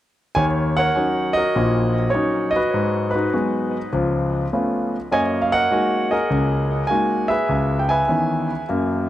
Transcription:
0.35 0.88 D#2 medium
0.35 0.88 D#3 medium
0.35 0.77 C#5 medium
0.35 0.44 G#5 loud
0.77 1.36 A#4 medium
0.77 1.92 C#5 medium
0.77 1.38 F#5 medium
0.96 1.38 F#3 soft
0.96 1.38 C#4 soft
0.96 1.38 D#4 soft
1.33 2.51 F#4 medium
1.33 2.08 D#5 medium
1.37 2.52 A#4 medium
1.56 2.07 A#1 medium
1.56 2.07 A#2 medium
2.10 2.57 F#3 soft
2.10 2.57 C#4 soft
2.10 2.54 C#5 medium
2.15 2.57 D#4 medium
2.51 3.08 D#5 medium
2.56 3.14 F#4 medium
2.56 3.09 B4 medium
2.74 3.25 G#2 medium
3.11 3.86 B4 medium
3.15 3.88 D#4 soft
3.15 3.32 F#4 soft
3.33 3.76 F#3 soft
3.33 3.76 G#3 soft
3.33 3.76 B3 soft
3.33 3.76 F#4 soft
3.93 4.44 C#2 medium
3.93 4.44 F3 medium
4.53 4.95 A3 soft
4.53 4.95 B3 soft
4.53 4.95 C#4 soft
4.53 4.95 F4 medium
5.12 5.63 F#2 medium
5.12 5.63 A#3 medium
5.12 6.27 C#5 medium
5.12 5.52 D#5 medium
5.12 5.19 G#5 medium
5.42 5.52 F5 medium
5.52 6.11 A#4 medium
5.52 6.09 D#5 medium
5.52 6.07 F#5 loud
5.71 6.13 G#3 soft
5.71 6.14 A#3 soft
5.71 6.14 D#4 soft
5.71 6.14 F#4 medium
6.11 7.26 G#4 medium
6.11 7.27 A#4 medium
6.11 6.91 D#5 medium
6.30 6.82 C#2 medium
6.30 6.82 C#3 medium
6.87 7.32 G#3 soft
6.87 7.32 A#3 soft
6.87 7.32 D#4 soft
6.87 7.32 F#4 soft
6.87 7.30 G#5 medium
7.28 8.45 G#4 medium
7.28 7.89 B4 medium
7.28 7.80 E5 medium
7.49 8.01 C#2 medium
7.79 7.89 G5 medium
7.89 8.64 B4 medium
7.89 8.64 E5 medium
7.89 8.63 G#5 medium
8.08 8.51 D#3 soft
8.08 8.51 E3 soft
8.08 8.51 B3 soft
8.08 8.51 C#4 soft
8.69 9.09 F#2 medium
8.69 9.09 A#3 medium

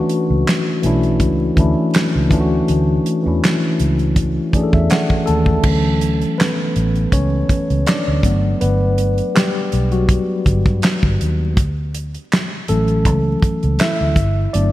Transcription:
0.00 0.68 E3 loud
0.00 0.68 A3 medium
0.00 0.69 C#4 medium
0.00 0.70 D4 medium
0.00 0.73 F#4 loud
0.00 2.33 B4 medium
0.09 closed hi-hat medium
0.30 0.43 C#2 medium
0.48 snare medium
0.48 clap medium
0.48 closed hi-hat medium
0.82 1.21 B1 medium
0.82 1.47 E3 medium
0.82 1.47 A3 medium
0.82 1.48 C#4 medium
0.82 1.49 D4 medium
0.82 closed hi-hat medium
0.86 1.49 E4 medium
1.03 closed hi-hat soft
1.20 1.49 C#2 medium
1.20 kick medium
1.20 closed hi-hat medium
1.55 1.73 D2 medium
1.55 2.21 E3 medium
1.55 2.21 A3 medium
1.55 2.22 C#4 medium
1.55 kick medium
1.55 closed hi-hat medium
1.59 2.23 D4 medium
1.59 2.23 E4 medium
1.94 snare loud
1.94 clap medium
1.94 closed hi-hat medium
2.15 2.31 C#2 medium
2.29 2.60 D2 medium
2.29 3.10 E3 medium
2.29 3.11 A3 medium
2.29 3.11 C#4 medium
2.29 kick medium
2.29 closed hi-hat medium
2.33 3.12 D4 medium
2.33 2.39 F4 medium
2.41 3.16 F#4 medium
2.68 2.98 D2 medium
2.68 closed hi-hat medium
3.06 closed hi-hat medium
3.23 3.39 E2 medium
3.23 4.35 E3 medium
3.23 4.36 A3 medium
3.23 4.37 C#4 medium
3.23 4.37 D4 medium
3.28 4.38 E4 medium
3.44 snare medium
3.44 clap medium
3.44 closed hi-hat medium
3.80 4.38 C#2 medium
3.80 closed hi-hat medium
3.99 closed hi-hat soft
4.16 kick medium
4.16 closed hi-hat medium
4.52 5.49 E3 medium
4.52 5.27 A3 medium
4.52 5.50 C#4 medium
4.52 5.51 D4 medium
4.52 4.72 D5 medium
4.52 muted fingered electric bass stroke soft
4.52 kick medium
4.52 closed hi-hat medium
4.57 4.62 G#4 medium
4.63 5.25 A4 medium
4.73 4.87 E2 medium
4.73 4.89 E5 medium
4.73 kick medium
4.90 5.25 F#5 medium
4.90 snare loud
4.90 clap medium
4.90 closed hi-hat medium
5.10 kick medium
5.26 5.57 D#2 medium
5.26 5.98 A3 medium
5.26 5.96 A4 loud
5.26 5.62 A5 medium
5.26 closed hi-hat medium
5.46 kick medium
5.63 6.23 D2 medium
5.63 6.71 E3 soft
5.63 6.71 F#3 soft
5.63 6.72 C#4 medium
5.63 kick loud
5.63 crash medium
6.01 closed hi-hat medium
6.21 closed hi-hat soft
6.38 7.09 B3 medium
6.38 7.14 B4 medium
6.38 snare loud
6.38 clap medium
6.38 closed hi-hat medium
6.76 7.05 A1 medium
6.76 closed hi-hat medium
6.96 closed hi-hat soft
7.12 7.42 C#2 medium
7.12 7.83 C#4 medium
7.12 7.83 C#5 medium
7.12 kick medium
7.12 closed hi-hat medium
7.49 kick medium
7.49 closed hi-hat medium
7.70 7.83 C#2 medium
7.70 closed hi-hat soft
7.86 8.57 D4 medium
7.86 8.63 D5 medium
7.86 snare loud
7.86 clap medium
7.86 closed hi-hat medium
8.08 8.21 D2 medium
8.23 8.53 G1 medium
8.23 8.74 F#3 medium
8.23 8.74 A3 medium
8.23 8.61 B3 medium
8.23 kick medium
8.23 closed hi-hat medium
8.61 9.20 G1 medium
8.61 9.31 B3 medium
8.61 9.37 B4 medium
8.61 closed hi-hat medium
8.98 closed hi-hat medium
9.18 closed hi-hat soft
9.35 9.88 G3 medium
9.35 9.94 G4 medium
9.35 snare loud
9.35 clap medium
9.35 closed hi-hat medium
9.72 10.18 B1 medium
9.72 closed hi-hat medium
9.92 11.16 F#3 medium
9.92 11.16 F#4 medium
9.92 closed hi-hat soft
10.09 kick medium
10.09 closed hi-hat medium
10.46 10.62 G1 medium
10.46 kick medium
10.46 closed hi-hat medium
10.66 10.80 G2 medium
10.66 kick medium
10.66 closed hi-hat soft
10.82 snare loud
10.82 clap medium
10.82 closed hi-hat medium
11.03 11.16 G1 medium
11.03 kick medium
11.21 11.57 D#2 medium
11.21 closed hi-hat medium
11.57 12.16 D2 loud
11.57 kick loud
11.57 closed hi-hat medium
11.94 closed hi-hat medium
12.15 closed hi-hat soft
12.33 snare loud
12.33 clap medium
12.33 closed hi-hat medium
12.68 13.06 A1 medium
12.68 14.12 E3 medium
12.68 14.13 F#3 medium
12.68 13.76 A3 medium
12.68 14.13 C#4 medium
12.68 13.83 A4 medium
12.68 closed hi-hat medium
12.88 closed hi-hat soft
13.05 13.35 C#2 medium
13.05 kick medium
13.05 closed hi-hat medium
13.42 kick medium
13.42 closed hi-hat medium
13.63 13.76 C#2 medium
13.63 closed hi-hat soft
13.79 14.50 E4 medium
13.79 14.50 E5 loud
13.79 snare loud
13.79 clap medium
13.79 closed hi-hat medium
14.01 14.13 D2 medium
14.16 14.45 G1 medium
14.16 kick medium
14.16 closed hi-hat medium
14.53 14.72 G1 loud
14.53 14.72 F#3 medium
14.53 14.72 A3 soft
14.53 14.72 B3 medium
14.53 14.72 D4 medium
14.53 14.72 D5 medium
14.53 closed hi-hat medium

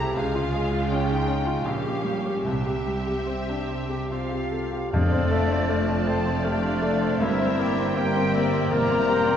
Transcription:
0.00 0.12 C2 medium
0.00 0.12 C3 medium
0.00 0.16 A3 soft
0.00 0.18 C4 soft
0.00 0.15 E4 medium
0.00 0.18 E4 medium
0.00 0.18 F4 soft
0.00 0.19 G4 soft
0.00 0.18 A4 soft
0.00 0.15 C5 medium
0.00 0.15 A#5 medium
0.15 1.65 C#2 medium
0.15 1.61 C#2 medium
0.15 1.65 C#3 medium
0.15 1.65 G#3 medium
0.15 1.65 F4 medium
0.15 0.87 G#4 medium
0.15 0.87 F5 medium
0.35 0.64 F4 soft
0.55 0.83 G#3 soft
0.72 1.01 F4 soft
0.87 1.25 G4 soft
0.87 1.64 G5 medium
0.92 1.20 C#4 soft
1.11 1.28 D#4 soft
1.26 1.58 C#4 soft
1.26 1.64 F4 soft
1.46 1.65 F4 soft
1.64 2.44 A#1 soft
1.64 2.45 A#1 soft
1.64 2.44 A#2 soft
1.64 2.46 C#4 soft
1.64 2.45 G4 soft
1.64 2.46 F5 medium
1.86 2.18 G4 soft
2.04 2.37 G3 soft
2.25 2.46 G4 soft
2.45 4.89 C2 soft
2.45 4.72 C2 soft
2.45 3.65 C3 medium
2.45 4.72 C3 soft
2.45 4.68 C4 soft
2.45 4.51 G4 soft
2.45 4.68 G4 soft
2.45 4.06 E5 medium
2.66 2.99 G4 soft
2.86 3.19 G3 soft
3.07 3.40 G4 soft
3.27 3.60 C4 soft
3.49 3.69 D4 soft
3.69 4.02 C4 soft
3.89 4.22 G4 soft
4.09 4.44 C4 soft
4.09 4.88 F4 medium
4.09 4.89 F5 medium
4.31 4.64 G4 soft
4.51 4.73 A4 soft
4.73 4.93 G4 soft
4.92 7.18 F1 medium
4.92 6.04 F2 medium
4.92 7.18 F2 medium
4.92 7.18 F3 medium
4.92 7.18 A3 medium
4.92 6.41 A3 medium
4.92 7.18 C4 medium
4.92 6.09 D4 medium
4.92 5.67 A4 medium
4.92 5.67 C5 soft
4.92 7.18 C5 medium
4.92 6.08 D5 medium
4.92 6.09 D5 medium
4.92 5.34 F5 medium
4.92 5.67 F5 soft
5.12 5.44 C4 soft
5.31 5.62 A3 soft
5.31 5.71 E5 medium
5.51 5.82 C4 soft
5.69 6.00 A3 medium
5.69 6.43 F4 medium
5.69 7.21 D5 medium
5.69 6.09 F5 medium
5.69 6.45 A5 soft
5.88 6.18 C4 soft
6.06 6.37 A3 soft
6.06 6.47 C4 medium
6.06 6.44 C5 medium
6.06 6.46 C5 medium
6.06 6.46 A5 medium
6.26 6.56 C4 soft
6.43 6.75 A3 medium
6.43 7.20 D4 medium
6.43 7.23 D4 medium
6.43 6.83 G4 medium
6.43 7.21 D5 medium
6.43 7.21 F5 medium
6.43 7.23 F5 medium
6.62 6.94 C4 medium
6.82 7.14 A3 medium
6.82 7.21 A4 medium
7.01 7.21 C4 medium
7.19 8.69 G1 medium
7.19 9.37 G2 medium
7.19 8.69 G2 medium
7.19 7.95 G3 medium
7.19 7.95 A#3 medium
7.19 7.96 C4 medium
7.19 7.98 C4 medium
7.19 7.96 E4 medium
7.19 7.96 A#4 medium
7.19 7.96 C5 medium
7.19 7.96 E5 medium
7.19 7.61 E5 medium
7.19 7.98 E5 medium
7.23 7.97 C5 medium
7.23 7.61 E5 medium
7.41 7.71 C4 medium
7.59 7.90 A#3 soft
7.59 7.98 D5 medium
7.59 7.96 G5 medium
7.79 8.09 C4 medium
7.95 8.70 G3 medium
7.95 8.70 A#3 medium
7.95 8.28 A#3 medium
7.95 9.37 A#3 medium
7.95 8.71 C4 medium
7.95 8.73 G4 medium
7.95 8.71 A#4 soft
7.95 8.34 C5 medium
7.95 8.71 E5 medium
7.95 8.46 G5 medium
7.95 8.34 G5 medium
7.95 8.72 G5 medium
7.99 8.72 C5 medium
8.17 8.47 C4 medium
8.34 8.65 A#3 medium
8.34 8.71 D5 medium
8.34 8.73 E5 medium
8.53 8.83 C4 medium
8.70 9.37 E1 medium
8.70 9.37 E2 medium
8.70 9.37 G3 medium
8.70 9.37 A#3 medium
8.70 9.02 A#3 medium
8.70 9.37 C4 medium
8.70 9.37 G4 medium
8.70 9.37 A#4 medium
8.70 9.37 C5 medium
8.70 9.09 D5 medium
8.70 9.37 D5 medium
8.70 9.09 E5 medium
8.70 9.37 A#5 medium
8.90 9.20 C4 medium
9.08 9.37 A#3 medium
9.08 9.37 C5 medium
9.08 9.37 G5 medium
9.27 9.37 C4 medium

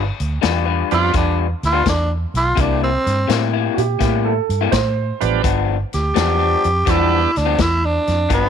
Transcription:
0.20 0.38 D2 medium
0.20 closed hi-hat medium
0.41 0.82 E2 medium
0.41 0.66 G3 medium
0.41 0.65 D4 medium
0.41 0.65 F4 medium
0.41 0.64 B4 medium
0.41 snare loud
0.41 closed hi-hat medium
0.65 0.95 G3 medium
0.65 0.95 D4 medium
0.65 0.95 F4 medium
0.65 0.94 B4 medium
0.91 1.10 F2 medium
0.91 1.12 F3 medium
0.91 1.12 G3 medium
0.91 1.12 B3 medium
0.91 1.12 D4 medium
0.91 1.16 F4 medium
0.91 closed hi-hat medium
1.13 1.53 E2 medium
1.13 1.45 G3 medium
1.13 1.46 D4 medium
1.13 1.39 D4 medium
1.13 1.46 F4 medium
1.13 1.46 B4 medium
1.13 kick loud
1.13 snare soft
1.13 closed hi-hat medium
1.63 1.81 D2 medium
1.63 1.87 F4 medium
1.63 snare soft
1.63 closed hi-hat medium
1.73 1.82 G3 medium
1.73 1.82 D4 medium
1.73 1.83 F4 medium
1.73 1.83 B4 medium
1.83 2.24 E2 medium
1.83 muted clean electric guitar stroke medium
1.83 kick medium
1.83 snare loud
1.83 closed hi-hat medium
1.88 2.11 D4 medium
2.34 2.53 B1 medium
2.34 2.62 F4 medium
2.34 snare soft
2.34 closed hi-hat medium
2.55 2.96 C2 loud
2.55 2.88 C3 medium
2.55 2.89 G3 medium
2.55 2.89 A#3 medium
2.55 2.89 E4 medium
2.55 kick loud
2.55 closed hi-hat medium
2.60 2.82 D4 medium
2.84 3.52 C4 medium
3.07 3.25 G2 medium
3.07 snare soft
3.07 closed hi-hat medium
3.27 3.68 A2 medium
3.27 3.53 C3 medium
3.27 3.52 G3 medium
3.27 3.52 A#3 medium
3.27 3.52 E4 medium
3.27 snare loud
3.27 closed hi-hat medium
3.53 3.82 C3 medium
3.53 3.81 G3 medium
3.53 3.81 A#3 medium
3.53 3.81 E4 medium
3.74 3.96 A#2 medium
3.74 3.80 F#4 medium
3.74 closed hi-hat medium
3.79 4.24 G4 medium
3.99 4.39 A2 medium
3.99 4.32 C3 medium
3.99 4.32 G3 medium
3.99 4.32 A#3 medium
3.99 4.32 E4 medium
3.99 kick loud
3.99 snare soft
3.99 closed hi-hat medium
4.25 4.71 A4 medium
4.49 4.68 G2 medium
4.49 closed hi-hat medium
4.61 4.71 C3 medium
4.61 4.71 G3 medium
4.61 4.71 A#3 medium
4.61 4.71 E4 medium
4.72 5.11 A2 medium
4.72 5.18 C5 medium
4.72 muted clean electric guitar stroke soft
4.72 kick medium
4.72 snare loud
4.72 closed hi-hat medium
5.21 5.40 A1 medium
5.21 5.42 F3 medium
5.21 5.42 G3 medium
5.21 5.42 B3 medium
5.21 5.42 D4 medium
5.21 5.59 B4 medium
5.21 closed hi-hat medium
5.43 5.83 G1 medium
5.43 5.75 G2 medium
5.43 5.75 F3 medium
5.43 5.76 B3 medium
5.43 5.76 D4 medium
5.43 kick loud
5.43 closed hi-hat medium
5.93 6.12 D2 medium
5.93 6.92 G4 loud
5.93 snare soft
5.93 closed hi-hat medium
6.14 6.54 E2 medium
6.14 6.38 G2 medium
6.14 6.38 F3 medium
6.14 6.38 B3 medium
6.14 6.37 D4 medium
6.14 snare loud
6.14 closed hi-hat medium
6.38 6.68 G2 medium
6.38 6.67 F3 medium
6.38 6.67 B3 medium
6.38 6.67 D4 medium
6.64 6.83 F2 medium
6.64 closed hi-hat medium
6.85 7.26 E2 medium
6.85 7.18 G2 medium
6.85 7.18 F3 medium
6.85 7.31 G3 soft
6.85 7.18 B3 medium
6.85 7.31 B3 soft
6.85 7.19 D4 medium
6.85 7.31 D4 medium
6.85 kick loud
6.85 snare soft
6.85 closed hi-hat medium
6.90 7.38 E4 medium
7.36 7.55 D2 medium
7.36 7.63 D4 medium
7.36 snare soft
7.36 closed hi-hat medium
7.45 7.56 G2 medium
7.45 7.57 F3 medium
7.45 7.57 B3 medium
7.45 7.57 D4 medium
7.57 7.97 E2 medium
7.57 muted clean electric guitar stroke soft
7.57 kick medium
7.57 snare loud
7.57 closed hi-hat medium
7.61 7.87 E4 medium
7.85 8.30 D4 medium
8.07 8.26 F2 medium
8.07 snare soft
8.07 closed hi-hat medium
8.29 8.49 G1 medium
8.29 8.49 G2 medium
8.29 8.49 F3 medium
8.29 8.49 B3 medium
8.29 8.49 D4 medium
8.29 kick loud
8.29 closed hi-hat medium
8.34 8.49 B3 medium

